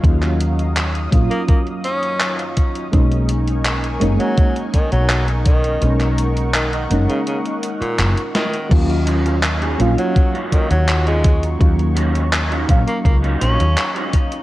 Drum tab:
CC |----------------|----------------|----------------|x---------------|
HH |xxxxxxxxxxxxxxxx|xxxxxxxxxxxxxxxx|xxxxxxxxxxxxxxxx|xxxxxxxxxxxxxxxx|
CP |-x--x-------x---|----x-------x---|-x--x-------x---|----x-------x---|
SD |----------------|----------------|--------------o-|----------------|
BD |o-----o-o-----o-|o-------o-o---o-|----------------|o-------o-o---o-|

CC |----------------|
HH |xxxxxxxxxxxxxxxx|
CP |----x-------x---|
SD |----------------|
BD |o-----o-o-----o-|